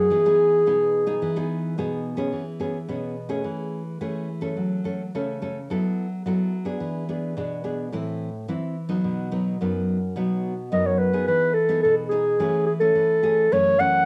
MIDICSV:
0, 0, Header, 1, 3, 480
1, 0, Start_track
1, 0, Key_signature, 4, "major"
1, 0, Tempo, 559180
1, 82, Time_signature, 4, 2, 24, 8
1, 12063, End_track
2, 0, Start_track
2, 0, Title_t, "Clarinet"
2, 0, Program_c, 0, 71
2, 0, Note_on_c, 0, 68, 88
2, 1489, Note_off_c, 0, 68, 0
2, 9208, Note_on_c, 0, 75, 69
2, 9327, Note_on_c, 0, 73, 65
2, 9339, Note_off_c, 0, 75, 0
2, 9431, Note_on_c, 0, 71, 67
2, 9444, Note_off_c, 0, 73, 0
2, 9672, Note_off_c, 0, 71, 0
2, 9677, Note_on_c, 0, 71, 90
2, 9907, Note_on_c, 0, 69, 79
2, 9920, Note_off_c, 0, 71, 0
2, 10145, Note_off_c, 0, 69, 0
2, 10150, Note_on_c, 0, 69, 82
2, 10262, Note_off_c, 0, 69, 0
2, 10380, Note_on_c, 0, 68, 80
2, 10838, Note_off_c, 0, 68, 0
2, 10871, Note_on_c, 0, 68, 67
2, 10928, Note_off_c, 0, 68, 0
2, 10985, Note_on_c, 0, 69, 79
2, 11614, Note_on_c, 0, 73, 90
2, 11627, Note_off_c, 0, 69, 0
2, 11846, Note_on_c, 0, 78, 95
2, 11859, Note_off_c, 0, 73, 0
2, 12063, Note_off_c, 0, 78, 0
2, 12063, End_track
3, 0, Start_track
3, 0, Title_t, "Nylon-string guitar"
3, 0, Program_c, 1, 24
3, 89, Note_on_c, 1, 52, 65
3, 94, Note_on_c, 1, 59, 52
3, 96, Note_on_c, 1, 63, 55
3, 101, Note_on_c, 1, 68, 63
3, 169, Note_off_c, 1, 59, 0
3, 171, Note_off_c, 1, 63, 0
3, 173, Note_off_c, 1, 68, 0
3, 218, Note_on_c, 1, 59, 54
3, 223, Note_on_c, 1, 63, 66
3, 228, Note_on_c, 1, 68, 64
3, 531, Note_off_c, 1, 59, 0
3, 534, Note_off_c, 1, 63, 0
3, 536, Note_off_c, 1, 68, 0
3, 542, Note_off_c, 1, 52, 0
3, 571, Note_on_c, 1, 47, 64
3, 576, Note_on_c, 1, 59, 57
3, 577, Note_on_c, 1, 63, 59
3, 581, Note_on_c, 1, 68, 57
3, 889, Note_off_c, 1, 59, 0
3, 891, Note_off_c, 1, 63, 0
3, 893, Note_off_c, 1, 68, 0
3, 913, Note_on_c, 1, 59, 60
3, 917, Note_on_c, 1, 63, 64
3, 921, Note_on_c, 1, 68, 76
3, 1022, Note_off_c, 1, 47, 0
3, 1047, Note_on_c, 1, 52, 75
3, 1119, Note_off_c, 1, 59, 0
3, 1121, Note_off_c, 1, 63, 0
3, 1121, Note_off_c, 1, 68, 0
3, 1168, Note_on_c, 1, 59, 60
3, 1171, Note_on_c, 1, 63, 59
3, 1173, Note_on_c, 1, 68, 68
3, 1486, Note_off_c, 1, 59, 0
3, 1486, Note_off_c, 1, 63, 0
3, 1488, Note_off_c, 1, 68, 0
3, 1499, Note_off_c, 1, 52, 0
3, 1526, Note_on_c, 1, 47, 72
3, 1530, Note_on_c, 1, 59, 60
3, 1534, Note_on_c, 1, 63, 61
3, 1534, Note_on_c, 1, 68, 62
3, 1846, Note_off_c, 1, 59, 0
3, 1846, Note_off_c, 1, 63, 0
3, 1849, Note_off_c, 1, 68, 0
3, 1861, Note_on_c, 1, 59, 67
3, 1864, Note_on_c, 1, 61, 61
3, 1870, Note_on_c, 1, 68, 65
3, 1980, Note_off_c, 1, 47, 0
3, 1996, Note_on_c, 1, 52, 62
3, 2072, Note_off_c, 1, 59, 0
3, 2073, Note_off_c, 1, 61, 0
3, 2077, Note_off_c, 1, 68, 0
3, 2228, Note_on_c, 1, 59, 55
3, 2236, Note_on_c, 1, 61, 52
3, 2236, Note_on_c, 1, 68, 59
3, 2376, Note_off_c, 1, 59, 0
3, 2377, Note_off_c, 1, 61, 0
3, 2379, Note_off_c, 1, 68, 0
3, 2454, Note_off_c, 1, 52, 0
3, 2476, Note_on_c, 1, 47, 56
3, 2476, Note_on_c, 1, 59, 48
3, 2481, Note_on_c, 1, 61, 43
3, 2483, Note_on_c, 1, 68, 52
3, 2703, Note_off_c, 1, 59, 0
3, 2706, Note_off_c, 1, 61, 0
3, 2706, Note_off_c, 1, 68, 0
3, 2823, Note_on_c, 1, 57, 54
3, 2826, Note_on_c, 1, 61, 52
3, 2829, Note_on_c, 1, 68, 62
3, 2935, Note_off_c, 1, 47, 0
3, 2955, Note_on_c, 1, 52, 60
3, 3273, Note_off_c, 1, 57, 0
3, 3275, Note_off_c, 1, 61, 0
3, 3275, Note_off_c, 1, 68, 0
3, 3414, Note_off_c, 1, 52, 0
3, 3440, Note_on_c, 1, 52, 59
3, 3441, Note_on_c, 1, 57, 53
3, 3445, Note_on_c, 1, 61, 53
3, 3447, Note_on_c, 1, 68, 51
3, 3666, Note_off_c, 1, 57, 0
3, 3668, Note_off_c, 1, 68, 0
3, 3669, Note_off_c, 1, 61, 0
3, 3786, Note_on_c, 1, 57, 54
3, 3792, Note_on_c, 1, 61, 54
3, 3793, Note_on_c, 1, 69, 58
3, 3897, Note_off_c, 1, 52, 0
3, 3920, Note_on_c, 1, 54, 58
3, 4116, Note_off_c, 1, 57, 0
3, 4117, Note_off_c, 1, 61, 0
3, 4119, Note_off_c, 1, 69, 0
3, 4157, Note_on_c, 1, 57, 49
3, 4163, Note_on_c, 1, 61, 49
3, 4164, Note_on_c, 1, 69, 56
3, 4300, Note_off_c, 1, 57, 0
3, 4304, Note_off_c, 1, 61, 0
3, 4304, Note_off_c, 1, 69, 0
3, 4377, Note_off_c, 1, 54, 0
3, 4418, Note_on_c, 1, 49, 56
3, 4420, Note_on_c, 1, 57, 50
3, 4422, Note_on_c, 1, 61, 55
3, 4424, Note_on_c, 1, 69, 56
3, 4612, Note_off_c, 1, 57, 0
3, 4612, Note_off_c, 1, 61, 0
3, 4614, Note_off_c, 1, 69, 0
3, 4650, Note_on_c, 1, 57, 49
3, 4655, Note_on_c, 1, 61, 52
3, 4655, Note_on_c, 1, 69, 45
3, 4788, Note_off_c, 1, 57, 0
3, 4788, Note_off_c, 1, 61, 0
3, 4790, Note_off_c, 1, 69, 0
3, 4867, Note_off_c, 1, 49, 0
3, 4894, Note_on_c, 1, 54, 67
3, 4899, Note_on_c, 1, 59, 46
3, 4902, Note_on_c, 1, 64, 57
3, 4902, Note_on_c, 1, 69, 62
3, 5199, Note_off_c, 1, 59, 0
3, 5200, Note_off_c, 1, 69, 0
3, 5202, Note_off_c, 1, 64, 0
3, 5345, Note_off_c, 1, 54, 0
3, 5372, Note_on_c, 1, 54, 65
3, 5372, Note_on_c, 1, 59, 53
3, 5380, Note_on_c, 1, 64, 49
3, 5381, Note_on_c, 1, 69, 65
3, 5592, Note_off_c, 1, 59, 0
3, 5597, Note_off_c, 1, 64, 0
3, 5597, Note_off_c, 1, 69, 0
3, 5708, Note_on_c, 1, 59, 51
3, 5711, Note_on_c, 1, 62, 52
3, 5717, Note_on_c, 1, 68, 68
3, 5824, Note_off_c, 1, 54, 0
3, 5840, Note_on_c, 1, 52, 65
3, 6038, Note_off_c, 1, 59, 0
3, 6038, Note_off_c, 1, 62, 0
3, 6042, Note_off_c, 1, 68, 0
3, 6083, Note_on_c, 1, 59, 51
3, 6086, Note_on_c, 1, 62, 48
3, 6087, Note_on_c, 1, 68, 55
3, 6285, Note_off_c, 1, 62, 0
3, 6286, Note_off_c, 1, 59, 0
3, 6287, Note_off_c, 1, 68, 0
3, 6298, Note_off_c, 1, 52, 0
3, 6324, Note_on_c, 1, 47, 65
3, 6325, Note_on_c, 1, 59, 44
3, 6331, Note_on_c, 1, 62, 51
3, 6332, Note_on_c, 1, 68, 49
3, 6526, Note_off_c, 1, 59, 0
3, 6527, Note_off_c, 1, 62, 0
3, 6530, Note_off_c, 1, 68, 0
3, 6557, Note_on_c, 1, 59, 44
3, 6560, Note_on_c, 1, 62, 57
3, 6562, Note_on_c, 1, 68, 53
3, 6762, Note_off_c, 1, 62, 0
3, 6763, Note_off_c, 1, 59, 0
3, 6765, Note_off_c, 1, 68, 0
3, 6781, Note_off_c, 1, 47, 0
3, 6802, Note_on_c, 1, 45, 66
3, 6807, Note_on_c, 1, 52, 53
3, 6810, Note_on_c, 1, 64, 61
3, 6814, Note_on_c, 1, 60, 52
3, 7114, Note_off_c, 1, 52, 0
3, 7115, Note_off_c, 1, 60, 0
3, 7116, Note_off_c, 1, 64, 0
3, 7261, Note_off_c, 1, 45, 0
3, 7282, Note_on_c, 1, 52, 53
3, 7283, Note_off_c, 1, 52, 0
3, 7283, Note_on_c, 1, 52, 65
3, 7285, Note_on_c, 1, 60, 52
3, 7290, Note_on_c, 1, 64, 56
3, 7511, Note_off_c, 1, 60, 0
3, 7511, Note_off_c, 1, 64, 0
3, 7628, Note_on_c, 1, 54, 59
3, 7629, Note_on_c, 1, 59, 58
3, 7634, Note_on_c, 1, 63, 57
3, 7740, Note_off_c, 1, 52, 0
3, 7761, Note_on_c, 1, 47, 64
3, 7958, Note_off_c, 1, 59, 0
3, 7959, Note_off_c, 1, 54, 0
3, 7961, Note_off_c, 1, 63, 0
3, 7996, Note_on_c, 1, 54, 53
3, 8000, Note_on_c, 1, 59, 56
3, 8000, Note_on_c, 1, 63, 55
3, 8202, Note_off_c, 1, 54, 0
3, 8204, Note_off_c, 1, 59, 0
3, 8204, Note_off_c, 1, 63, 0
3, 8219, Note_off_c, 1, 47, 0
3, 8247, Note_on_c, 1, 42, 64
3, 8251, Note_on_c, 1, 54, 44
3, 8256, Note_on_c, 1, 59, 53
3, 8258, Note_on_c, 1, 63, 58
3, 8557, Note_off_c, 1, 54, 0
3, 8558, Note_off_c, 1, 59, 0
3, 8561, Note_off_c, 1, 63, 0
3, 8704, Note_off_c, 1, 42, 0
3, 8720, Note_on_c, 1, 47, 64
3, 8725, Note_on_c, 1, 54, 52
3, 8729, Note_on_c, 1, 59, 44
3, 8731, Note_on_c, 1, 63, 57
3, 9033, Note_off_c, 1, 54, 0
3, 9034, Note_off_c, 1, 59, 0
3, 9037, Note_off_c, 1, 63, 0
3, 9180, Note_off_c, 1, 47, 0
3, 9200, Note_on_c, 1, 42, 66
3, 9204, Note_on_c, 1, 54, 50
3, 9206, Note_on_c, 1, 59, 58
3, 9207, Note_on_c, 1, 63, 60
3, 9526, Note_off_c, 1, 54, 0
3, 9527, Note_off_c, 1, 59, 0
3, 9527, Note_off_c, 1, 63, 0
3, 9555, Note_on_c, 1, 59, 53
3, 9560, Note_on_c, 1, 63, 54
3, 9562, Note_on_c, 1, 68, 52
3, 9660, Note_off_c, 1, 42, 0
3, 9683, Note_on_c, 1, 52, 69
3, 9882, Note_off_c, 1, 59, 0
3, 9883, Note_off_c, 1, 63, 0
3, 9885, Note_off_c, 1, 68, 0
3, 10032, Note_on_c, 1, 59, 59
3, 10036, Note_on_c, 1, 63, 64
3, 10040, Note_on_c, 1, 68, 56
3, 10140, Note_off_c, 1, 52, 0
3, 10169, Note_on_c, 1, 47, 61
3, 10360, Note_off_c, 1, 59, 0
3, 10362, Note_off_c, 1, 63, 0
3, 10364, Note_off_c, 1, 68, 0
3, 10397, Note_on_c, 1, 59, 58
3, 10400, Note_on_c, 1, 63, 49
3, 10404, Note_on_c, 1, 68, 59
3, 10603, Note_off_c, 1, 59, 0
3, 10605, Note_off_c, 1, 63, 0
3, 10606, Note_off_c, 1, 68, 0
3, 10623, Note_off_c, 1, 47, 0
3, 10641, Note_on_c, 1, 52, 66
3, 10642, Note_on_c, 1, 57, 59
3, 10647, Note_on_c, 1, 68, 62
3, 10648, Note_on_c, 1, 61, 54
3, 10868, Note_off_c, 1, 57, 0
3, 10871, Note_off_c, 1, 68, 0
3, 10872, Note_off_c, 1, 61, 0
3, 10991, Note_on_c, 1, 57, 58
3, 10996, Note_on_c, 1, 61, 59
3, 11099, Note_off_c, 1, 52, 0
3, 11118, Note_on_c, 1, 52, 67
3, 11320, Note_off_c, 1, 57, 0
3, 11322, Note_off_c, 1, 61, 0
3, 11353, Note_on_c, 1, 57, 49
3, 11358, Note_on_c, 1, 61, 51
3, 11361, Note_on_c, 1, 68, 58
3, 11561, Note_off_c, 1, 57, 0
3, 11562, Note_off_c, 1, 61, 0
3, 11564, Note_off_c, 1, 68, 0
3, 11578, Note_off_c, 1, 52, 0
3, 11604, Note_on_c, 1, 42, 67
3, 11608, Note_on_c, 1, 52, 55
3, 11609, Note_on_c, 1, 57, 64
3, 11615, Note_on_c, 1, 61, 52
3, 11807, Note_off_c, 1, 52, 0
3, 11809, Note_off_c, 1, 57, 0
3, 11810, Note_off_c, 1, 61, 0
3, 11838, Note_on_c, 1, 52, 54
3, 11843, Note_on_c, 1, 57, 52
3, 11847, Note_on_c, 1, 61, 62
3, 12043, Note_off_c, 1, 52, 0
3, 12045, Note_off_c, 1, 57, 0
3, 12048, Note_off_c, 1, 61, 0
3, 12061, Note_off_c, 1, 42, 0
3, 12063, End_track
0, 0, End_of_file